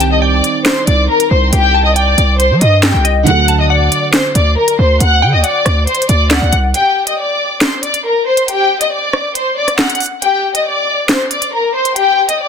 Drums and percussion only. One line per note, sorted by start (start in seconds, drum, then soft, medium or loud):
0.00 closed hi-hat medium
0.44 closed hi-hat medium
0.66 snare loud
0.66 clap medium
0.66 closed hi-hat medium
0.87 closed hi-hat medium
1.20 closed hi-hat medium
1.53 closed hi-hat medium
1.96 closed hi-hat medium
2.18 closed hi-hat medium
2.40 closed hi-hat medium
2.61 closed hi-hat medium
2.83 snare loud
2.83 clap loud
2.83 closed hi-hat medium
3.05 closed hi-hat medium
3.27 closed hi-hat medium
3.48 closed hi-hat medium
3.92 closed hi-hat medium
4.14 snare loud
4.14 clap medium
4.14 closed hi-hat medium
4.35 closed hi-hat medium
4.68 closed hi-hat medium
5.00 closed hi-hat medium
5.44 closed hi-hat medium
5.66 cross-stick loud
5.66 closed hi-hat medium
5.87 closed hi-hat soft
5.95 closed hi-hat medium
6.02 closed hi-hat medium
6.09 closed hi-hat medium
6.31 snare loud
6.31 clap loud
6.31 closed hi-hat medium
6.53 closed hi-hat medium
6.74 closed hi-hat medium
7.07 closed hi-hat medium
7.61 snare loud
7.61 clap medium
7.61 closed hi-hat medium
7.83 closed hi-hat medium
7.94 closed hi-hat medium
8.37 closed hi-hat medium
8.48 closed hi-hat medium
8.81 closed hi-hat medium
9.13 cross-stick loud
9.35 closed hi-hat medium
9.68 cross-stick medium
9.68 closed hi-hat medium
9.79 snare loud
9.79 clap loud
9.90 closed hi-hat medium
9.95 closed hi-hat medium
10.00 closed hi-hat medium
10.00 open hi-hat medium
10.06 closed hi-hat soft
10.22 closed hi-hat medium
10.55 closed hi-hat medium
11.09 snare loud
11.09 clap medium
11.09 closed hi-hat medium
11.31 closed hi-hat medium
11.42 closed hi-hat medium
11.85 closed hi-hat medium
11.96 closed hi-hat medium
12.29 closed hi-hat medium